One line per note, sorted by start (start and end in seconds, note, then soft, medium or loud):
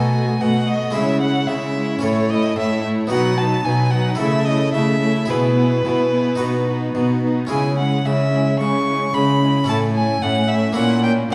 0.00 0.32 B2 soft
0.00 0.35 B2 soft
0.00 0.12 A3 soft
0.00 0.90 B3 soft
0.00 0.90 D#4 soft
0.00 0.13 F#4 soft
0.00 0.91 A4 soft
0.00 0.14 D#5 soft
0.00 0.42 G#5 medium
0.13 0.39 A3 soft
0.13 0.39 F#4 soft
0.13 0.41 D#5 soft
0.40 0.86 B2 soft
0.40 0.89 B2 medium
0.40 0.65 A3 soft
0.40 0.67 F#4 soft
0.40 0.68 D#5 soft
0.40 0.69 F#5 medium
0.67 0.94 A3 soft
0.67 0.95 F#4 soft
0.67 0.95 D#5 medium
0.67 0.95 D#5 soft
0.91 1.98 G#3 soft
0.91 1.20 G#3 soft
0.91 1.98 E4 soft
0.91 1.99 G#4 soft
0.91 1.20 E5 medium
0.95 1.40 C#3 soft
0.95 1.43 C#3 medium
0.95 1.21 E4 soft
0.95 1.22 C#5 soft
1.21 1.47 G#3 soft
1.21 1.48 E4 soft
1.21 1.49 C#5 soft
1.21 1.48 F#5 medium
1.47 1.93 C#3 soft
1.47 1.97 C#3 soft
1.47 1.74 G#3 soft
1.47 1.76 E4 soft
1.47 2.02 E5 medium
1.51 1.77 C#5 soft
1.75 2.02 G#3 soft
1.75 2.04 E4 soft
1.75 2.03 C#5 soft
1.99 3.06 C#4 soft
1.99 3.07 E4 soft
1.99 3.07 A4 soft
1.99 2.32 C#5 medium
2.03 2.51 A2 medium
2.03 2.48 A2 soft
2.03 2.29 A3 soft
2.03 2.31 E4 soft
2.03 2.30 C#5 soft
2.30 2.56 A3 medium
2.30 2.58 E4 soft
2.30 2.56 C#5 soft
2.30 2.57 D#5 medium
2.56 3.02 A2 soft
2.56 3.05 A2 medium
2.56 2.83 A3 medium
2.56 2.84 E4 soft
2.56 2.84 C#5 soft
2.56 2.84 E5 medium
2.84 3.11 A3 soft
2.84 3.11 E4 soft
2.84 3.11 C#5 soft
3.07 4.14 B3 soft
3.07 4.15 D#4 soft
3.07 4.16 F#4 soft
3.11 3.59 B2 medium
3.11 3.56 B2 soft
3.11 3.37 F#3 medium
3.11 3.38 D#4 medium
3.11 3.37 B4 medium
3.11 3.38 F#5 medium
3.37 3.65 F#3 soft
3.37 3.64 D#4 soft
3.37 3.65 B4 soft
3.37 3.65 A5 medium
3.64 4.13 B2 medium
3.64 4.10 B2 soft
3.64 3.92 F#3 medium
3.64 3.91 D#4 medium
3.64 3.92 B4 medium
3.64 3.92 G#5 medium
3.91 4.19 F#3 medium
3.91 4.19 D#4 medium
3.91 4.20 B4 medium
3.91 4.18 F#5 medium
4.15 5.24 E4 soft
4.15 4.46 E4 medium
4.15 5.25 A4 soft
4.15 4.46 E5 medium
4.20 4.68 C#3 medium
4.20 4.65 C#3 soft
4.20 4.46 A3 medium
4.20 4.47 A4 medium
4.44 4.73 A3 soft
4.44 4.73 E4 soft
4.44 4.73 A4 soft
4.44 4.73 D#5 medium
4.73 5.23 C#3 medium
4.73 5.20 C#3 soft
4.73 5.00 A3 medium
4.73 5.00 E4 soft
4.73 5.01 A4 soft
4.73 5.31 E5 medium
5.01 5.29 A3 soft
5.01 5.28 E4 soft
5.01 5.29 A4 soft
5.25 5.78 B2 medium
5.25 6.34 E4 soft
5.25 5.55 E4 soft
5.25 6.35 G#4 soft
5.25 7.23 B4 medium
5.29 5.76 B2 soft
5.29 5.57 B3 medium
5.29 5.55 G#4 medium
5.57 5.84 B3 soft
5.57 5.83 E4 soft
5.57 5.83 G#4 soft
5.84 6.33 B2 medium
5.84 6.30 B2 soft
5.84 6.12 B3 soft
5.84 6.10 E4 soft
5.84 6.11 G#4 soft
6.11 6.39 B3 soft
6.11 6.39 E4 soft
6.11 6.39 G#4 soft
6.35 6.88 B2 medium
6.35 7.45 D#4 soft
6.35 7.46 F#4 soft
6.35 7.47 B4 soft
6.40 6.86 B2 soft
6.40 6.67 B3 soft
6.40 6.67 D#4 soft
6.40 6.65 F#4 soft
6.66 6.95 B3 soft
6.66 6.95 D#4 soft
6.66 6.94 F#4 soft
6.95 7.41 B2 soft
6.95 7.44 B2 soft
6.95 7.22 B3 soft
6.95 7.22 D#4 soft
6.95 7.22 F#4 soft
7.23 7.50 B3 soft
7.23 7.50 D#4 soft
7.23 7.50 F#4 soft
7.47 7.99 C#3 medium
7.47 7.96 C#3 soft
7.47 9.62 C#4 soft
7.47 9.63 E4 soft
7.47 7.77 E4 soft
7.47 9.64 G#4 soft
7.47 7.76 G#5 medium
7.51 7.78 G#3 medium
7.51 7.77 C#4 soft
7.78 8.04 G#3 soft
7.78 8.05 C#4 soft
7.78 8.03 E4 soft
7.78 8.07 F#5 medium
8.05 8.53 C#3 medium
8.05 8.51 C#3 soft
8.05 8.31 G#3 soft
8.05 8.32 C#4 soft
8.05 8.31 E4 soft
8.05 8.59 E5 medium
8.32 8.59 G#3 soft
8.32 8.59 C#4 soft
8.32 8.58 E4 soft
8.59 9.08 C#3 medium
8.59 9.05 C#3 soft
8.59 8.86 G#3 soft
8.59 8.86 C#4 soft
8.59 8.86 E4 soft
8.59 9.15 C#6 medium
8.87 9.12 G#3 soft
8.87 9.14 C#4 soft
8.87 9.13 E4 soft
9.13 9.62 C#3 medium
9.13 9.59 C#3 soft
9.13 9.40 G#3 medium
9.13 9.41 C#4 soft
9.13 9.40 E4 soft
9.13 9.68 B5 medium
9.41 9.68 G#3 soft
9.41 9.68 C#4 soft
9.41 9.67 E4 soft
9.64 10.72 C#4 soft
9.64 10.73 E4 soft
9.64 10.73 A4 soft
9.69 10.17 A2 medium
9.69 10.14 A2 soft
9.69 9.94 A3 medium
9.69 9.95 C#4 medium
9.69 9.93 E4 medium
9.69 9.77 A5 medium
9.94 10.21 A3 soft
9.94 10.22 C#4 soft
9.94 10.21 E4 soft
9.94 10.23 G#5 medium
10.22 10.71 A2 medium
10.22 10.68 A2 soft
10.22 10.49 A3 soft
10.22 10.49 C#4 soft
10.22 10.47 E4 soft
10.22 10.49 F#5 medium
10.48 10.77 A3 medium
10.48 10.75 C#4 soft
10.48 10.74 E4 medium
10.48 10.75 E5 medium
10.72 11.35 A#3 soft
10.72 11.03 A#3 medium
10.72 11.35 E4 soft
10.72 11.02 E4 medium
10.72 11.35 C#5 soft
10.72 11.02 F#5 medium
10.77 11.22 A#2 soft
10.77 11.25 A#2 medium
10.77 11.02 C#4 medium
11.03 11.28 A#3 medium
11.03 11.28 C#4 medium
11.03 11.29 E4 soft
11.03 11.11 G5 medium
11.29 11.35 A#2 medium
11.29 11.35 A#3 medium
11.29 11.35 C#4 medium
11.29 11.35 E4 soft